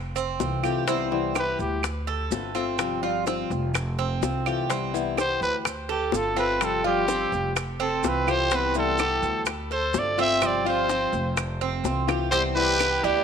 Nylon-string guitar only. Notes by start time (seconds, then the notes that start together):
0.40 E3 A3 C4 F4
0.63 E3 A3 C4 F4
0.87 C3 E3 G3 B3 E4
1.11 E3 G3 B3 E4
1.35 E3 G3 B3 E4
1.84 muted nylon-string guitar stroke
2.31 D3 A3 C4 F4
2.55 A3 C4 F4
2.78 C3 F3 G3 C4 F4
3.03 F3 G3 C4 F4
3.26 F3 G3 C4 F4
3.74 muted nylon-string guitar stroke
4.22 E3 A3 C4 F4
4.47 E3 A3 C4 F4
4.69 C3 E3 G3 B3 E4
4.94 E3 G3 B3 E4
5.17 E3 G3 B3 E4
5.66 muted nylon-string guitar stroke
6.12 D3 A3 C4 F4
6.37 A3 C4 F4
6.60 C3 F3 G3 C4 F4
6.84 F3 G3 C4 F4
7.08 F3 G3 C4 F4
7.56 muted nylon-string guitar stroke
8.02 E3 A3 C4 F4
8.27 E3 A3 C4 F4
8.51 C3 E3 G3 B3 E4
8.76 E3 G3 B3 E4
8.99 E3 G3 B3 E4
9.47 muted nylon-string guitar stroke
9.94 D3 A3 C4 F4
10.18 A3 C4 F4
10.41 C3 F3 G3 C4 F4
10.65 F3 G3 C4 F4
10.89 F3 G3 C4 F4
11.37 muted nylon-string guitar stroke
11.84 E3 A3 C4 F4
12.07 E3 A3 C4 F4
12.32 C3 E3 G3 B3 E4
12.56 E3 G3 B3 E4
12.78 E3 G3 B3 E4